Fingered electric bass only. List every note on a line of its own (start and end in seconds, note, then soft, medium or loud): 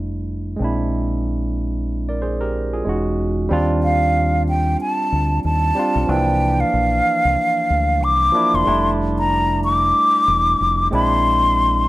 0.00 0.55 F1 medium
0.60 2.81 A#1 medium
2.86 3.47 E1 medium
3.51 4.75 D#2 medium
5.12 5.39 D2 medium
5.45 5.71 D#2 medium
5.95 6.06 B1 medium
6.09 6.62 C2 loud
6.73 7.00 A#1 medium
7.25 7.35 C2 medium
7.70 8.03 D2 medium
8.03 8.29 C2 medium
8.54 8.64 E1 medium
8.67 9.91 F1 medium
10.28 10.54 E1 medium
10.60 10.87 F1 medium
10.93 11.88 A#1 medium